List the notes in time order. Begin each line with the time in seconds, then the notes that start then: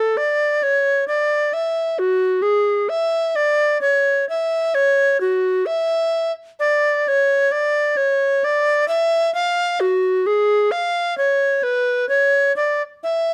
Already playing: A4
0.17 D5
0.63 C#5
1.08 D5
1.53 E5
1.99 F#4
2.42 G#4
2.89 E5
3.36 D5
3.81 C#5
4.29 E5
4.75 C#5
5.21 F#4
5.66 E5
6.60 D5
7.08 C#5
7.52 D5
7.97 C#5
8.44 D5
8.88 E5
9.35 F5
9.80 F#4
10.26 G#4
10.71 F5
11.18 C#5
11.63 B4
12.09 C#5
12.56 D5
13.04 E5